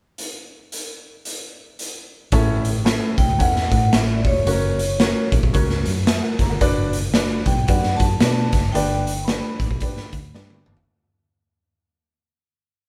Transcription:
0.18 closed hi-hat medium
0.72 closed hi-hat medium
1.25 closed hi-hat medium
1.79 closed hi-hat medium
2.32 2.98 A1 medium
2.32 3.14 A2 medium
2.32 2.67 C#4 loud
2.32 2.67 E4 medium
2.32 2.67 A4 medium
2.32 2.67 C#5 loud
2.32 kick loud
2.32 closed hi-hat loud
2.65 closed hi-hat medium
2.85 3.20 C#4 medium
2.85 3.20 E4 medium
2.85 3.20 A4 medium
2.85 3.21 C#5 medium
2.85 snare loud
2.85 closed hi-hat medium
3.18 3.28 B1 medium
3.18 3.40 G5 loud
3.18 kick medium
3.18 closed hi-hat medium
3.28 3.40 C#2 medium
3.39 3.68 E2 medium
3.39 3.74 C#4 medium
3.39 3.74 E4 medium
3.39 3.74 A4 medium
3.39 3.74 C#5 medium
3.39 3.95 F#5 medium
3.39 kick medium
3.39 closed hi-hat medium
3.56 snare soft
3.71 3.91 A2 loud
3.71 kick medium
3.71 closed hi-hat medium
3.92 4.22 A1 medium
3.92 4.28 C#4 medium
3.92 4.27 E4 medium
3.92 4.28 A4 medium
3.92 4.28 C#5 medium
3.92 4.18 E5 medium
3.92 snare loud
3.92 closed hi-hat medium
4.16 4.25 D5 medium
4.24 4.44 E1 medium
4.24 5.29 C#5 medium
4.24 kick medium
4.24 open hi-hat soft
4.46 5.13 F#1 loud
4.46 4.81 C#4 medium
4.46 4.81 F#4 medium
4.46 4.82 A#4 medium
4.46 4.82 C#5 medium
4.46 closed hi-hat loud
4.79 closed hi-hat medium
5.00 5.35 C#4 medium
5.00 5.36 F#4 medium
5.00 5.36 A#4 medium
5.00 5.36 C#5 medium
5.00 snare loud
5.00 closed hi-hat medium
5.32 5.42 A#1 medium
5.32 kick medium
5.32 closed hi-hat medium
5.43 5.53 B1 medium
5.43 kick medium
5.53 5.82 C#2 medium
5.53 5.88 C#4 medium
5.53 5.88 F#4 medium
5.53 5.88 A#4 medium
5.53 5.89 C#5 medium
5.53 kick medium
5.53 closed hi-hat medium
5.70 snare soft
5.86 6.20 F#2 medium
5.86 closed hi-hat medium
6.07 6.23 E5 medium
6.07 snare loud
6.07 closed hi-hat medium
6.23 6.39 A#4 medium
6.23 6.38 F#5 medium
6.39 6.49 F#1 medium
6.39 6.51 C#5 medium
6.39 6.50 A#5 medium
6.39 kick medium
6.39 snare soft
6.39 closed hi-hat medium
6.50 6.60 G1 medium
6.50 6.76 A#4 medium
6.50 6.75 F#5 medium
6.61 7.43 F#1 loud
6.61 6.96 D4 loud
6.61 6.96 F#4 loud
6.61 6.96 B4 medium
6.61 6.96 D5 loud
6.61 kick loud
6.61 closed hi-hat medium
6.93 closed hi-hat medium
7.14 7.49 D4 medium
7.14 7.49 F#4 medium
7.14 7.50 B4 medium
7.14 7.49 D5 medium
7.14 snare medium
7.14 closed hi-hat medium
7.46 7.65 B1 medium
7.46 7.69 G5 medium
7.46 kick medium
7.46 closed hi-hat medium
7.67 7.96 F#2 medium
7.67 8.02 D4 medium
7.67 8.02 F#4 medium
7.67 8.03 B4 medium
7.67 8.03 D5 medium
7.67 8.00 F#5 medium
7.67 kick medium
7.67 closed hi-hat medium
7.83 snare soft
7.97 8.19 F#2 medium
7.97 8.75 A5 medium
7.97 kick medium
7.97 closed hi-hat medium
8.20 8.49 B2 medium
8.20 8.56 D4 medium
8.20 8.56 F#4 medium
8.20 8.56 B4 medium
8.20 8.56 D5 medium
8.20 snare loud
8.20 closed hi-hat medium
8.53 8.72 F#1 medium
8.53 kick medium
8.53 snare soft
8.53 closed hi-hat medium
8.72 9.40 G1 loud
8.72 9.56 G2 medium
8.72 9.09 D4 medium
8.72 9.09 G4 medium
8.72 9.09 B4 medium
8.72 9.09 D5 loud
8.72 9.23 G5 medium
8.72 closed hi-hat loud
9.07 closed hi-hat medium
9.25 10.60 B5 medium
9.25 snare loud
9.25 closed hi-hat medium
9.29 9.63 D4 medium
9.29 9.63 G4 medium
9.29 9.63 B4 medium
9.29 9.63 D5 medium
9.60 9.69 A1 medium
9.60 kick loud
9.60 closed hi-hat medium
9.71 9.80 B1 medium
9.71 kick medium
9.80 10.16 D4 medium
9.80 10.16 G4 medium
9.80 10.16 B4 medium
9.80 10.16 D5 medium
9.80 kick medium
9.80 closed hi-hat medium
9.97 muted fingered electric bass stroke soft
9.97 snare soft
10.13 10.32 D2 medium
10.13 kick medium
10.13 closed hi-hat medium
10.35 10.62 G2 medium
10.35 10.69 D4 medium
10.35 10.69 G4 medium
10.35 10.69 B4 medium
10.35 10.69 D5 medium
10.35 snare medium
10.50 high tom medium
10.66 10.85 F#1 medium
10.66 mid tom medium
10.77 floor tom medium

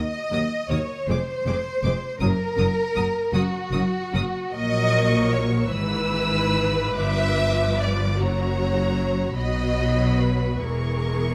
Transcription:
0.00 0.68 D#5 medium
0.31 0.39 D#2 medium
0.31 0.40 F#3 soft
0.31 0.40 A#4 soft
0.31 0.40 D#6 soft
0.69 0.77 D#2 medium
0.69 0.78 D#2 medium
0.69 0.78 F#3 soft
0.69 0.78 A#4 soft
0.69 1.08 C#5 medium
0.69 0.79 D#6 soft
1.08 1.17 F1 medium
1.08 1.16 F2 medium
1.08 1.17 G#3 medium
1.08 1.17 G#4 medium
1.08 2.21 C5 medium
1.08 1.18 D6 soft
1.46 1.56 F1 medium
1.46 1.54 F2 medium
1.46 1.55 G#3 soft
1.46 1.56 G#4 soft
1.46 1.55 D6 soft
1.83 1.92 F1 medium
1.83 1.91 F2 medium
1.83 1.93 G#3 soft
1.83 1.93 G#4 soft
1.83 1.92 D6 soft
2.20 2.30 F#1 medium
2.20 2.28 F#2 medium
2.20 2.30 F#3 medium
2.20 3.31 A#4 loud
2.20 2.30 A#4 medium
2.20 2.29 D#6 soft
2.57 2.67 F#1 medium
2.57 2.65 F#2 medium
2.57 2.67 F#3 soft
2.57 2.67 A#4 soft
2.57 2.66 D#6 soft
2.95 3.05 F#1 medium
2.95 3.03 F#2 medium
2.95 3.04 F#3 soft
2.95 3.04 A#4 medium
2.95 3.04 D#6 medium
3.34 3.42 F#1 medium
3.34 3.42 F#2 medium
3.34 3.42 F#3 medium
3.34 4.55 F#4 medium
3.34 3.42 A#4 medium
3.34 3.42 D#6 medium
3.72 3.81 F#1 medium
3.72 3.81 F#2 medium
3.72 3.81 F#3 soft
3.72 3.80 A#4 soft
3.72 3.80 D#6 soft
4.13 4.23 F#1 medium
4.13 4.21 F#2 medium
4.13 4.21 F#3 medium
4.13 4.21 A#4 medium
4.13 4.23 D#6 medium
4.53 5.68 A#1 medium
4.53 5.67 A#2 medium
4.53 5.67 F#3 medium
4.53 5.67 A#4 medium
4.53 5.31 D#5 loud
4.53 5.68 C#6 medium
5.32 5.71 C#5 medium
5.71 6.95 G#1 medium
5.71 6.95 G#2 medium
5.71 6.98 E3 medium
5.71 6.97 B4 medium
5.71 8.19 B4 medium
5.71 6.98 E6 medium
6.97 8.17 G1 medium
6.97 8.17 G2 medium
6.97 8.16 F3 medium
6.97 7.80 E5 loud
6.97 8.17 D6 medium
7.80 8.19 D5 medium
8.18 9.37 F#1 medium
8.18 9.38 F#2 medium
8.18 9.36 F#3 medium
8.18 9.36 F#4 medium
8.18 9.37 C#5 medium
8.18 9.37 A#5 medium
9.37 10.59 B1 medium
9.37 10.60 B2 medium
9.37 10.60 F#3 soft
9.37 10.60 F#4 medium
9.37 10.19 D#5 medium
9.37 10.60 B5 soft
10.20 10.63 B4 medium
10.63 11.35 E1 soft
10.63 11.35 E2 soft
10.63 11.35 E3 soft
10.63 11.35 G#4 soft
10.63 11.35 A#4 medium
10.63 11.35 C#6 medium

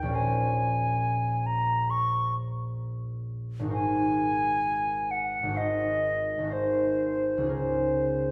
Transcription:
0.00 3.71 A#1 soft
0.00 0.12 D#2 soft
0.00 0.14 D#4 soft
0.00 3.14 F5 soft
0.00 0.17 G5 medium
0.05 3.73 C#4 soft
0.05 3.98 F4 soft
0.11 3.67 A#4 soft
0.11 3.69 C5 soft
0.15 1.48 G#5 medium
1.46 1.92 A#5 medium
1.90 2.35 C#6 medium
3.59 5.42 G#1 soft
3.59 5.44 D#4 soft
3.65 5.47 F#4 soft
3.65 5.51 A#4 soft
3.71 5.53 C5 soft
3.71 5.12 G#5 medium
5.11 5.59 F#5 soft
5.43 6.37 G#1 soft
5.43 6.41 D#4 soft
5.48 6.43 F#4 soft
5.48 6.46 A#4 soft
5.54 6.48 C5 soft
5.54 6.54 D#5 medium
6.38 7.50 G#1 soft
6.38 7.39 D#4 soft
6.45 7.53 F#4 soft
6.45 7.48 A#4 soft
6.50 7.55 C5 soft
6.50 7.51 C5 soft
7.38 8.31 C#2 soft
7.38 8.31 D#4 soft
7.43 8.31 F4 soft
7.43 8.31 G#4 soft
7.49 8.31 A#4 soft
7.49 8.31 C5 soft

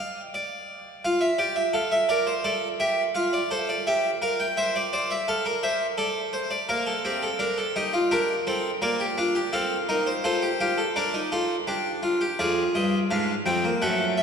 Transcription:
0.00 0.20 F5 medium
0.34 1.02 D5 medium
1.05 1.26 F4 medium
1.05 1.21 F5 medium
1.21 1.38 E5 medium
1.38 1.61 G4 medium
1.38 1.56 D5 medium
1.56 1.73 E5 medium
1.73 1.95 A4 medium
1.73 1.91 F5 medium
1.92 2.09 E5 medium
2.09 2.31 A#4 medium
2.09 2.26 D5 medium
2.27 2.44 C5 medium
2.44 2.66 A4 medium
2.44 2.66 D5 medium
2.80 3.02 G4 medium
2.80 3.02 E5 medium
3.15 3.37 F4 medium
3.15 3.32 F5 medium
3.33 3.50 D5 medium
3.51 3.73 A4 medium
3.51 3.68 C5 medium
3.69 3.86 D5 medium
3.87 4.09 G4 medium
3.87 4.09 E5 medium
4.22 4.44 A#4 medium
4.22 4.39 F5 medium
4.40 4.57 G5 medium
4.57 4.79 C5 medium
4.57 4.74 E5 medium
4.76 4.92 D5 medium
4.93 5.10 C5 medium
4.93 5.15 D5 medium
5.11 5.27 E5 medium
5.28 5.45 A4 medium
5.28 5.50 F5 medium
5.45 5.62 A#4 medium
5.63 5.85 C5 medium
5.63 5.85 E5 medium
5.98 6.66 A4 loud
5.98 6.20 D5 medium
6.33 6.50 C5 medium
6.51 6.68 D5 medium
6.69 6.91 A#3 medium
6.69 6.86 A#4 medium
6.69 8.07 F5 medium
6.87 7.04 A4 medium
7.05 7.27 C4 medium
7.05 7.22 G4 medium
7.23 7.40 A4 medium
7.39 7.62 D4 medium
7.39 7.57 A#4 medium
7.58 7.75 A4 medium
7.76 7.98 D#4 loud
7.76 7.93 G4 medium
7.93 8.11 F4 medium
8.11 8.33 D4 loud
8.11 8.33 G4 medium
8.11 8.80 A#4 medium
8.47 8.69 C4 medium
8.47 8.69 A4 medium
8.82 9.04 A#3 medium
8.82 8.99 A#4 medium
8.82 9.51 D5 medium
9.00 9.17 G4 medium
9.18 9.40 D4 medium
9.18 9.35 F4 medium
9.35 9.53 G4 medium
9.53 9.75 C4 medium
9.53 9.75 A4 medium
9.53 10.22 F5 medium
9.89 10.11 D#4 medium
9.89 10.06 A#4 medium
10.07 10.23 C5 medium
10.24 10.46 F4 medium
10.24 10.42 A4 medium
10.24 10.93 C5 medium
10.42 10.59 G4 medium
10.60 10.78 F4 medium
10.60 10.82 G4 medium
10.78 10.95 A4 medium
10.96 11.13 D4 medium
10.96 11.18 A#4 medium
10.96 12.35 D5 medium
11.14 11.31 D#4 medium
11.32 11.54 F4 medium
11.32 11.54 A4 medium
11.67 12.37 D4 medium
11.67 11.90 G4 medium
12.03 12.20 F4 medium
12.21 12.38 G4 medium
12.39 12.61 F2 medium
12.39 13.08 F4 medium
12.39 13.77 G#4 medium
12.39 12.61 D5 medium
12.75 12.97 G2 medium
12.75 12.97 D#5 medium
13.11 13.32 G#2 medium
13.11 13.32 D4 medium
13.11 13.32 F5 medium
13.46 13.68 F2 medium
13.46 13.63 C4 medium
13.46 13.68 G5 medium
13.64 13.81 A#3 medium
13.82 14.23 F#2 medium
13.82 14.23 A3 medium
13.82 14.23 A4 medium
13.82 14.03 F#5 medium
14.17 14.23 E5 medium

